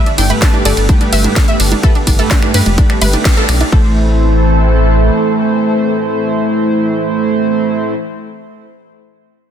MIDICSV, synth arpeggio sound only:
0, 0, Header, 1, 2, 480
1, 0, Start_track
1, 0, Key_signature, 0, "minor"
1, 0, Tempo, 472441
1, 1864, Time_signature, 4, 2, 24, 8
1, 9661, End_track
2, 0, Start_track
2, 0, Title_t, "Synth arpeggio sound"
2, 0, Program_c, 0, 84
2, 65, Note_on_c, 0, 62, 67
2, 142, Note_off_c, 0, 62, 0
2, 185, Note_on_c, 0, 62, 67
2, 262, Note_off_c, 0, 62, 0
2, 306, Note_on_c, 0, 71, 97
2, 382, Note_off_c, 0, 71, 0
2, 424, Note_on_c, 0, 62, 62
2, 502, Note_off_c, 0, 62, 0
2, 545, Note_on_c, 0, 62, 66
2, 622, Note_off_c, 0, 62, 0
2, 665, Note_on_c, 0, 74, 100
2, 742, Note_off_c, 0, 74, 0
2, 785, Note_on_c, 0, 62, 64
2, 862, Note_off_c, 0, 62, 0
2, 905, Note_on_c, 0, 62, 66
2, 982, Note_off_c, 0, 62, 0
2, 1025, Note_on_c, 0, 62, 65
2, 1102, Note_off_c, 0, 62, 0
2, 1144, Note_on_c, 0, 76, 99
2, 1222, Note_off_c, 0, 76, 0
2, 1265, Note_on_c, 0, 62, 68
2, 1342, Note_off_c, 0, 62, 0
2, 1384, Note_on_c, 0, 62, 68
2, 1462, Note_off_c, 0, 62, 0
2, 1505, Note_on_c, 0, 76, 96
2, 1582, Note_off_c, 0, 76, 0
2, 1624, Note_on_c, 0, 62, 66
2, 1702, Note_off_c, 0, 62, 0
2, 1745, Note_on_c, 0, 62, 67
2, 1822, Note_off_c, 0, 62, 0
2, 1864, Note_on_c, 0, 69, 102
2, 1942, Note_off_c, 0, 69, 0
2, 1985, Note_on_c, 0, 62, 66
2, 2062, Note_off_c, 0, 62, 0
2, 2104, Note_on_c, 0, 62, 64
2, 2182, Note_off_c, 0, 62, 0
2, 2225, Note_on_c, 0, 69, 93
2, 2302, Note_off_c, 0, 69, 0
2, 2344, Note_on_c, 0, 62, 64
2, 2422, Note_off_c, 0, 62, 0
2, 2465, Note_on_c, 0, 62, 67
2, 2542, Note_off_c, 0, 62, 0
2, 2584, Note_on_c, 0, 71, 95
2, 2662, Note_off_c, 0, 71, 0
2, 2705, Note_on_c, 0, 62, 60
2, 2782, Note_off_c, 0, 62, 0
2, 2824, Note_on_c, 0, 62, 67
2, 2902, Note_off_c, 0, 62, 0
2, 2945, Note_on_c, 0, 62, 64
2, 3022, Note_off_c, 0, 62, 0
2, 3065, Note_on_c, 0, 71, 99
2, 3142, Note_off_c, 0, 71, 0
2, 3186, Note_on_c, 0, 62, 68
2, 3262, Note_off_c, 0, 62, 0
2, 3304, Note_on_c, 0, 62, 66
2, 3382, Note_off_c, 0, 62, 0
2, 3426, Note_on_c, 0, 69, 93
2, 3502, Note_off_c, 0, 69, 0
2, 3545, Note_on_c, 0, 62, 67
2, 3623, Note_off_c, 0, 62, 0
2, 3666, Note_on_c, 0, 62, 65
2, 3742, Note_off_c, 0, 62, 0
2, 3785, Note_on_c, 0, 69, 96
2, 8068, Note_off_c, 0, 69, 0
2, 9661, End_track
0, 0, End_of_file